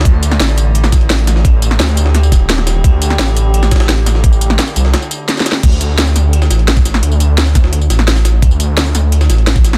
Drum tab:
CC |------------------------------------------------------------------------------------------------|------------------------------------------------------------------------------------------------|------------------------------------------------------------------------------------------------|------------------------------------------------------------------------------------------------|
HH |x-----------x-----------x-----------x-----------x-----------x-----x-----x-----x-----x-----------|x-----------x-----------x-----x-----x-----------x-----------x-----------x-----------x-----------|x-----------x-----------x-----------x-----------x-----------x--x--x-----x-----x-----x-----------|x-----------x-----------x-----x-----x-----------x-----------x-----------x-----------x-----------|
TB |------------x-----------------x-----x-----------------x-----x-----------------------x-----------|------------x-----------------x-----x-----------------x-----x-----------------------x-----------|------------x-----------------x-----x-----------------x-----x-----------------------x-----------|------x-----x-----------------x-----x-----------------x-----x-----------------x-----x-----------|
SD |------------------o-----o-----------------------------o-----o-----------o-----------o-----o-----|------------------o-----o-----------------o-----o-----------o-----------o-----o-----o-----------|------------------o-----o-----------------------------o-----o--o--o-----o-----------o-----o-----|------------------o-----o-----------------o-----o-----------------------o-----o-o---o---o-------|
BD |o-----------------------------------------------------------o-----------------------------------|o-----------------------------------------------------------o-----------------------------------|o-----------------------------------------------------------o-----------------------------------|o-----------------------------------------------------------------------------------------------|

CC |x-----------------------------------------------------------------------------------------------|------------------------------------------------------------------------------------------------|------------------------------------------------------------------------------------------------|
HH |x-----------x-----------x-----------x-----------x-----------x-----x-----x-----x-----x-----------|x-----------x-----------x-----x-----x-----------x-----------x-----------x-----------x-----------|x-----------x-----------x-----------x-----------x-----------x-----x-----x-----x-----x-----------|
TB |------x-----x-----------------x-----x-----------------x-----x-----------------x-----x-----------|------x-----x-----------------x-----x-----------------x-----x-----------------x-----x-----------|------x-----x-----------------x-----x-----------------x-----x-----------------x-----x-----------|
SD |------------------------o-----------o-----------------o-----o-----------o-----------o-----o-----|------------------------o-----------o-----o-----------------o-----o-----o-----o-----o-----------|------------------------o-----------o-----------------o-----o-----------o-----------o-----o-----|
BD |o-----------------------------------------------------------------------------o-----------------|------------------------------------o-----------------------------------------------------------|o-----------------------------------------------------------------------------o-----------------|